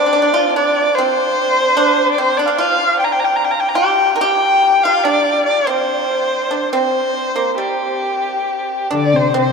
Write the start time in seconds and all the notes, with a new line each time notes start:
Already playing: D5
0.06 D4
0.13 D4
0.22 D4
0.34 F4
0.56 D4 D5
0.95 C4 C5
1.77 D4
2.11 D5
2.18 C4 C5
2.37 D4 D5
2.46 D4 D5 F5
2.57 F4 F5
2.99 G5
3.04 A#5
3.12 G5
3.20 A#5
3.24 G5
3.36 A#5
3.45 G5
3.51 A#5
3.60 G5
3.69 A#5
3.75 G4 G5
4.16 A#4
4.20 G4 G5
4.83 F4 F5
5.04 D4 D5
5.46 D5
5.67 C4 C5
6.51 D4
6.73 C4 C5
7.36 A#3
7.58 G3 G4
8.91 D3 D4 D5
8.96 D5
9.14 C3 C5
9.34 C3 C4 C5
9.39 C5